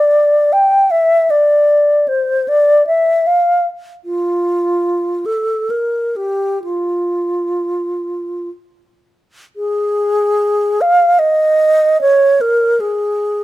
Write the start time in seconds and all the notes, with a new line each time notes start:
Already playing: D5
0.53 G5
0.91 E5
1.30 D5
2.08 C5
2.48 D5
2.87 E5
3.27 F5
4.05 F4
5.26 A4
5.70 A#4
6.16 G4
6.64 F4
9.56 G#4
10.81 F5
11.19 D#5
12.01 C#5
12.41 A#4
12.80 G#4